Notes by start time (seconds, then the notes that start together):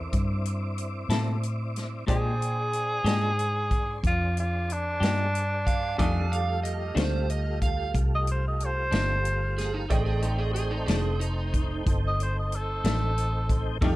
Already playing: C4 E4 A4 A#4 D5 E5
0.13 G2, kick, closed hi-hat
0.45 closed hi-hat
0.78 closed hi-hat
1.09 A2 C3 A#3 E4 A4, snare, closed hi-hat
1.43 closed hi-hat
1.76 snare, closed hi-hat
2.07 A#2 G#3 D4 G4 G#4 C5 D5 G5, kick, closed hi-hat
2.11 G#4
2.42 closed hi-hat
2.73 closed hi-hat
3.04 G#2 A#2 G#3 D4 G4, snare, closed hi-hat
3.39 closed hi-hat
3.71 kick, closed hi-hat
4.03 F2 F4, kick, closed hi-hat
4.37 F4, closed hi-hat
4.70 D4, closed hi-hat
5.00 G2 A#2 G#3 D4 G4, snare, closed hi-hat
5.35 closed hi-hat
5.67 F5, kick, closed hi-hat
5.98 F2 D#3 G3 A3 D4 F4 A4 F5 G#5 D6 D#6, kick, closed hi-hat
6.32 F5, closed hi-hat
6.63 D#5, closed hi-hat
6.95 D2 F2 D#3 A3 D4 C5, snare, closed hi-hat
7.30 D#5, closed hi-hat
7.62 F5, kick, closed hi-hat
7.94 C2, kick, closed hi-hat
8.15 D#5
8.27 closed hi-hat
8.31 C5
8.48 D#5
8.60 closed hi-hat
8.65 C5
8.91 G1 F2 D#3 A3 D4, snare, closed hi-hat
9.25 closed hi-hat
9.58 G#4, snare, closed hi-hat
9.74 D#4
9.88 A1 A3 C4 D#4 G#4 D5 D#5 G5, kick, closed hi-hat
10.06 G#4
10.22 D#4, closed hi-hat
10.39 G#4
10.54 G#4, closed hi-hat
10.71 D#4
10.86 F1 D#3 A3 D4 G#4, snare, closed hi-hat
10.90 F2
11.20 D#4, closed hi-hat
11.54 kick, closed hi-hat
11.86 G1, kick, closed hi-hat
12.07 D#5
12.20 C5, closed hi-hat
12.39 D#5
12.52 A4, closed hi-hat
12.84 A1 F2 D#3 A3 D4, snare, closed hi-hat
13.18 closed hi-hat
13.49 kick, closed hi-hat
13.81 F2 D3 D#3 G3 A3 D4 F4 A4 D5 D#5 G5, kick, ride